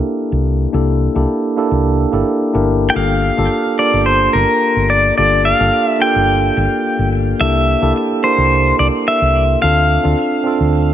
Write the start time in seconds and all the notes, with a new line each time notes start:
Already playing: A#3 D4 E4 G4 A4 A#4
0.32 C2
0.73 C2 A#3 D4 E4 G4 A4
1.15 C2 A#3 D4 E4 G4 A4
1.56 A#3 D4 E4 G4 A4
1.71 C2
2.12 G1 A#3 D4 E4 G4 A4
2.53 G1 A#3 D4 E4 G4 A#4
2.90 G5
2.94 G1 A#3 D4 F4 G4 A4 F5
3.37 G1 A#3 D4 F4 G4 A4
3.79 A#3 D4 F4 G4 A#4 D5
3.93 G1
4.06 C5
4.33 G1 A#4
4.76 G1
4.90 D5
5.18 G1 A#3 D4 F4 G4 A4 D5
5.45 F5
5.59 G1 A#3 D4 F4 G4 A4
5.87 E5
5.99 A#3 D4 F4 G4 A4 G5
6.16 G1
6.57 G1
6.99 G1
7.39 C2 A#3 D4 E4 G4 A4 E5
7.81 C2 A#3 D4 E4 G4 A4
8.23 A#3 D4 E4 G4 A#4 C5
8.38 C2
8.79 C2 D5
9.08 E5
9.22 C2
9.62 D2 C4 D4 F4 A4 F5
10.03 D2 C4 D4 F4 A4
10.43 C4 D4 F4 A4
10.60 D2